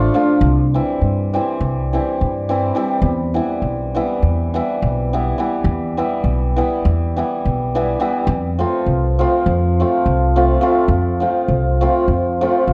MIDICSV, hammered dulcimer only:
0, 0, Header, 1, 2, 480
1, 0, Start_track
1, 0, Tempo, 581959
1, 341, Time_signature, 9, 3, 24, 8
1, 10500, End_track
2, 0, Start_track
2, 0, Title_t, "Hammered dulcimer"
2, 0, Program_c, 0, 15
2, 0, Note_on_c, 0, 53, 69
2, 0, Note_on_c, 0, 57, 72
2, 0, Note_on_c, 0, 62, 69
2, 0, Note_on_c, 0, 65, 88
2, 86, Note_off_c, 0, 57, 0
2, 91, Note_off_c, 0, 62, 0
2, 93, Note_off_c, 0, 65, 0
2, 106, Note_off_c, 0, 53, 0
2, 116, Note_on_c, 0, 53, 69
2, 121, Note_on_c, 0, 57, 72
2, 124, Note_on_c, 0, 62, 67
2, 130, Note_on_c, 0, 65, 75
2, 297, Note_off_c, 0, 57, 0
2, 298, Note_off_c, 0, 62, 0
2, 301, Note_off_c, 0, 65, 0
2, 382, Note_off_c, 0, 53, 0
2, 612, Note_on_c, 0, 52, 59
2, 614, Note_on_c, 0, 55, 59
2, 620, Note_on_c, 0, 60, 51
2, 623, Note_on_c, 0, 64, 81
2, 796, Note_off_c, 0, 60, 0
2, 797, Note_off_c, 0, 64, 0
2, 1092, Note_off_c, 0, 52, 0
2, 1095, Note_off_c, 0, 55, 0
2, 1102, Note_on_c, 0, 52, 72
2, 1105, Note_on_c, 0, 55, 63
2, 1111, Note_on_c, 0, 60, 63
2, 1119, Note_on_c, 0, 64, 73
2, 1288, Note_off_c, 0, 60, 0
2, 1292, Note_off_c, 0, 64, 0
2, 1582, Note_off_c, 0, 52, 0
2, 1585, Note_off_c, 0, 55, 0
2, 1592, Note_on_c, 0, 52, 64
2, 1595, Note_on_c, 0, 55, 51
2, 1602, Note_on_c, 0, 60, 58
2, 1607, Note_on_c, 0, 64, 70
2, 1781, Note_off_c, 0, 60, 0
2, 1783, Note_off_c, 0, 64, 0
2, 2044, Note_off_c, 0, 52, 0
2, 2046, Note_off_c, 0, 55, 0
2, 2054, Note_on_c, 0, 52, 76
2, 2057, Note_on_c, 0, 55, 58
2, 2064, Note_on_c, 0, 60, 65
2, 2071, Note_on_c, 0, 64, 71
2, 2240, Note_off_c, 0, 60, 0
2, 2244, Note_off_c, 0, 64, 0
2, 2257, Note_off_c, 0, 52, 0
2, 2264, Note_off_c, 0, 55, 0
2, 2266, Note_on_c, 0, 52, 57
2, 2274, Note_on_c, 0, 55, 72
2, 2282, Note_on_c, 0, 60, 56
2, 2282, Note_on_c, 0, 64, 73
2, 2455, Note_off_c, 0, 60, 0
2, 2455, Note_off_c, 0, 64, 0
2, 2538, Note_off_c, 0, 52, 0
2, 2538, Note_off_c, 0, 55, 0
2, 2756, Note_on_c, 0, 52, 65
2, 2760, Note_on_c, 0, 55, 55
2, 2762, Note_on_c, 0, 59, 57
2, 2774, Note_on_c, 0, 64, 74
2, 2945, Note_off_c, 0, 59, 0
2, 2951, Note_off_c, 0, 64, 0
2, 3245, Note_off_c, 0, 52, 0
2, 3251, Note_off_c, 0, 55, 0
2, 3255, Note_on_c, 0, 52, 67
2, 3261, Note_on_c, 0, 55, 59
2, 3267, Note_on_c, 0, 59, 64
2, 3270, Note_on_c, 0, 64, 85
2, 3445, Note_off_c, 0, 59, 0
2, 3446, Note_off_c, 0, 64, 0
2, 3734, Note_off_c, 0, 52, 0
2, 3743, Note_off_c, 0, 55, 0
2, 3744, Note_on_c, 0, 52, 71
2, 3753, Note_on_c, 0, 55, 60
2, 3754, Note_on_c, 0, 59, 61
2, 3760, Note_on_c, 0, 64, 80
2, 3935, Note_off_c, 0, 59, 0
2, 3939, Note_off_c, 0, 64, 0
2, 4223, Note_off_c, 0, 52, 0
2, 4223, Note_off_c, 0, 55, 0
2, 4233, Note_on_c, 0, 52, 63
2, 4233, Note_on_c, 0, 55, 61
2, 4239, Note_on_c, 0, 59, 67
2, 4242, Note_on_c, 0, 64, 74
2, 4407, Note_off_c, 0, 59, 0
2, 4408, Note_off_c, 0, 64, 0
2, 4427, Note_off_c, 0, 52, 0
2, 4434, Note_off_c, 0, 55, 0
2, 4437, Note_on_c, 0, 52, 70
2, 4444, Note_on_c, 0, 55, 62
2, 4450, Note_on_c, 0, 59, 56
2, 4453, Note_on_c, 0, 64, 75
2, 4619, Note_off_c, 0, 59, 0
2, 4620, Note_off_c, 0, 64, 0
2, 4917, Note_off_c, 0, 52, 0
2, 4918, Note_off_c, 0, 55, 0
2, 4926, Note_on_c, 0, 52, 58
2, 4929, Note_on_c, 0, 55, 64
2, 4933, Note_on_c, 0, 59, 61
2, 4939, Note_on_c, 0, 64, 81
2, 5110, Note_off_c, 0, 59, 0
2, 5113, Note_off_c, 0, 64, 0
2, 5404, Note_off_c, 0, 52, 0
2, 5412, Note_off_c, 0, 55, 0
2, 5414, Note_on_c, 0, 52, 75
2, 5422, Note_on_c, 0, 55, 63
2, 5426, Note_on_c, 0, 59, 71
2, 5429, Note_on_c, 0, 64, 76
2, 5604, Note_off_c, 0, 59, 0
2, 5606, Note_off_c, 0, 64, 0
2, 5900, Note_off_c, 0, 52, 0
2, 5906, Note_off_c, 0, 55, 0
2, 5910, Note_on_c, 0, 52, 63
2, 5916, Note_on_c, 0, 55, 59
2, 5921, Note_on_c, 0, 59, 63
2, 5928, Note_on_c, 0, 64, 73
2, 6099, Note_off_c, 0, 59, 0
2, 6103, Note_off_c, 0, 64, 0
2, 6382, Note_off_c, 0, 52, 0
2, 6385, Note_off_c, 0, 55, 0
2, 6392, Note_on_c, 0, 52, 73
2, 6395, Note_on_c, 0, 55, 71
2, 6400, Note_on_c, 0, 59, 69
2, 6403, Note_on_c, 0, 64, 73
2, 6567, Note_off_c, 0, 59, 0
2, 6569, Note_off_c, 0, 64, 0
2, 6586, Note_off_c, 0, 52, 0
2, 6590, Note_off_c, 0, 55, 0
2, 6596, Note_on_c, 0, 52, 77
2, 6600, Note_on_c, 0, 55, 71
2, 6604, Note_on_c, 0, 59, 70
2, 6610, Note_on_c, 0, 64, 75
2, 6776, Note_off_c, 0, 59, 0
2, 6779, Note_off_c, 0, 64, 0
2, 6856, Note_off_c, 0, 52, 0
2, 6856, Note_off_c, 0, 55, 0
2, 7082, Note_on_c, 0, 53, 71
2, 7086, Note_on_c, 0, 57, 54
2, 7094, Note_on_c, 0, 60, 64
2, 7098, Note_on_c, 0, 65, 80
2, 7267, Note_off_c, 0, 57, 0
2, 7271, Note_off_c, 0, 60, 0
2, 7273, Note_off_c, 0, 65, 0
2, 7569, Note_off_c, 0, 53, 0
2, 7579, Note_on_c, 0, 53, 77
2, 7583, Note_on_c, 0, 57, 60
2, 7591, Note_on_c, 0, 60, 62
2, 7594, Note_on_c, 0, 65, 88
2, 7763, Note_off_c, 0, 57, 0
2, 7767, Note_off_c, 0, 60, 0
2, 7768, Note_off_c, 0, 65, 0
2, 8071, Note_off_c, 0, 53, 0
2, 8081, Note_on_c, 0, 53, 62
2, 8087, Note_on_c, 0, 57, 70
2, 8090, Note_on_c, 0, 60, 57
2, 8097, Note_on_c, 0, 65, 74
2, 8262, Note_off_c, 0, 57, 0
2, 8264, Note_off_c, 0, 60, 0
2, 8267, Note_off_c, 0, 65, 0
2, 8534, Note_off_c, 0, 53, 0
2, 8544, Note_on_c, 0, 53, 66
2, 8546, Note_on_c, 0, 57, 76
2, 8551, Note_on_c, 0, 60, 58
2, 8557, Note_on_c, 0, 65, 71
2, 8721, Note_off_c, 0, 57, 0
2, 8723, Note_off_c, 0, 60, 0
2, 8726, Note_off_c, 0, 65, 0
2, 8741, Note_off_c, 0, 53, 0
2, 8751, Note_on_c, 0, 53, 78
2, 8757, Note_on_c, 0, 57, 68
2, 8762, Note_on_c, 0, 60, 62
2, 8766, Note_on_c, 0, 65, 81
2, 8933, Note_off_c, 0, 57, 0
2, 8935, Note_off_c, 0, 60, 0
2, 8937, Note_off_c, 0, 65, 0
2, 9229, Note_off_c, 0, 53, 0
2, 9239, Note_on_c, 0, 53, 63
2, 9248, Note_on_c, 0, 57, 48
2, 9253, Note_on_c, 0, 60, 58
2, 9256, Note_on_c, 0, 65, 61
2, 9428, Note_off_c, 0, 57, 0
2, 9431, Note_off_c, 0, 60, 0
2, 9432, Note_off_c, 0, 65, 0
2, 9732, Note_off_c, 0, 53, 0
2, 9740, Note_on_c, 0, 57, 71
2, 9741, Note_on_c, 0, 53, 67
2, 9748, Note_on_c, 0, 60, 63
2, 9754, Note_on_c, 0, 65, 79
2, 9922, Note_off_c, 0, 57, 0
2, 9926, Note_off_c, 0, 60, 0
2, 9928, Note_off_c, 0, 65, 0
2, 10227, Note_off_c, 0, 53, 0
2, 10237, Note_on_c, 0, 53, 76
2, 10237, Note_on_c, 0, 57, 71
2, 10247, Note_on_c, 0, 60, 53
2, 10249, Note_on_c, 0, 65, 67
2, 10417, Note_off_c, 0, 57, 0
2, 10423, Note_off_c, 0, 60, 0
2, 10424, Note_off_c, 0, 65, 0
2, 10500, Note_off_c, 0, 53, 0
2, 10500, End_track
0, 0, End_of_file